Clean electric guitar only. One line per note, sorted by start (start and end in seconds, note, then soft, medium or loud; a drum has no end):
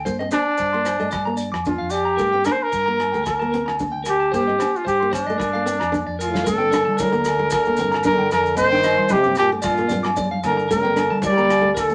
0.05 0.16 C5 medium
0.19 0.29 D#5 medium
0.31 0.42 C5 medium
0.58 0.69 C5 medium
0.73 0.82 C6 medium
0.85 0.96 C5 medium
1.00 1.09 D#5 medium
1.11 1.22 D5 medium
1.25 1.35 A#5 medium
1.37 1.48 D5 medium
1.52 1.61 D6 medium
1.78 1.88 F5 medium
1.91 2.02 D5 medium
2.05 2.15 A#5 medium
2.17 2.29 A#4 medium
2.32 2.42 G5 medium
2.45 2.56 A#4 medium
2.72 2.83 A#4 medium
2.86 2.95 A#5 medium
2.98 muted clean electric guitar stroke medium
3.12 3.22 G5 medium
3.24 3.35 A#4 medium
3.40 3.49 A5 medium
3.52 3.63 A#4 medium
3.66 3.76 A#5 medium
3.92 4.02 G5 medium
4.04 4.15 A#4 medium
4.20 4.29 A5 medium
4.32 4.43 C5 medium
4.47 4.56 D#5 medium
4.59 4.70 C5 medium
4.85 4.96 C5 medium
5.00 5.09 C6 medium
5.11 5.23 C5 medium
5.27 5.36 D#5 medium
5.38 5.49 A#4 medium
5.53 5.62 F5 medium
5.66 5.76 A#4 medium
5.80 5.89 A#5 medium
6.07 6.16 D5 medium
6.19 6.30 A#4 medium
6.34 6.43 F5 medium
6.44 6.55 A#4 medium
6.58 6.68 G5 medium
6.71 6.82 A#4 medium
6.85 6.95 A5 medium
6.97 7.08 A#4 medium
7.12 7.21 A#5 medium
7.51 7.62 A#4 medium
7.78 7.89 A#4 medium
7.92 8.01 A#5 medium
8.04 8.15 A#4 medium
8.18 8.27 G5 medium
8.44 muted clean electric guitar stroke medium
8.57 8.68 D#5 medium
8.72 8.81 G5 medium
8.84 8.95 D#5 medium
8.97 9.07 C6 medium
9.09 9.20 D#5 medium
9.23 9.33 D6 medium
9.62 9.73 D5 medium
9.88 10.00 D5 medium
10.03 10.12 D6 medium
10.17 10.27 D5 medium
10.31 10.40 F5 medium
10.57 10.66 A#5 medium
10.69 10.80 A#4 loud
10.83 10.92 G5 medium
11.10 11.19 A5 medium
11.23 11.33 A#4 medium
11.37 11.46 A#5 medium
11.75 11.85 A#4 medium